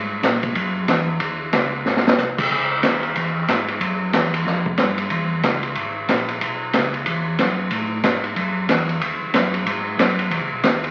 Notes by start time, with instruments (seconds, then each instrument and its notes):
Already playing: tonewheel organ G#2
0.23 tonewheel organ A#2, kick, snare, hi-hat pedal, ride
0.43 kick, ride
0.55 tonewheel organ F#2, kick, ride
0.88 tonewheel organ E2, kick, snare, hi-hat pedal, ride
1.20 tonewheel organ D#2, kick, ride
1.53 tonewheel organ C#2, kick, snare, hi-hat pedal, ride
1.86 tonewheel organ G#1, snare
1.97 snare
2.07 snare
2.18 tonewheel organ C2, snare, hi-hat pedal
2.38 kick, crash
2.50 tonewheel organ C#2, kick
2.83 tonewheel organ D#2, kick, snare, hi-hat pedal, ride
3.03 ride
3.16 tonewheel organ E2, kick, ride
3.48 tonewheel organ G#2, kick, snare, hi-hat pedal, ride
3.68 ride
3.81 tonewheel organ F#2, kick, ride
4.13 tonewheel organ E2, kick, snare, hi-hat pedal, ride
4.34 ride
4.46 tonewheel organ F2, kick, snare
4.66 kick
4.78 tonewheel organ G2, kick, snare, hi-hat pedal, ride
4.98 ride
5.10 tonewheel organ E2, kick, ride
5.43 tonewheel organ C#2, kick, snare, hi-hat pedal, ride
5.63 ride
5.75 tonewheel organ G#1, kick, ride
6.09 tonewheel organ A#1, kick, snare, hi-hat pedal, ride
6.28 ride
6.41 tonewheel organ B1, kick, ride
6.73 tonewheel organ C#2, kick, snare, hi-hat pedal, ride
6.94 ride
7.06 tonewheel organ E2, kick, ride
7.38 tonewheel organ F#2, kick, snare, hi-hat pedal, ride
7.71 tonewheel organ A2, kick, ride
8.03 tonewheel organ G#2, kick, snare, hi-hat pedal, ride
8.24 ride
8.36 tonewheel organ F#2, kick, ride
8.69 tonewheel organ E2, kick, snare, hi-hat pedal, ride
8.89 ride
9.01 tonewheel organ D#2, kick, ride
9.21 tonewheel organ D#2
9.34 tonewheel organ F#2, kick, snare, hi-hat pedal, ride
9.54 ride
9.66 tonewheel organ G#2, kick, ride
9.98 tonewheel organ F#2, kick, snare, hi-hat pedal, ride
10.19 ride
10.31 tonewheel organ E2, kick, ride
10.41 tonewheel organ C#2
10.52 tonewheel organ B1
10.63 tonewheel organ D#2, kick, snare, hi-hat pedal, ride
10.84 ride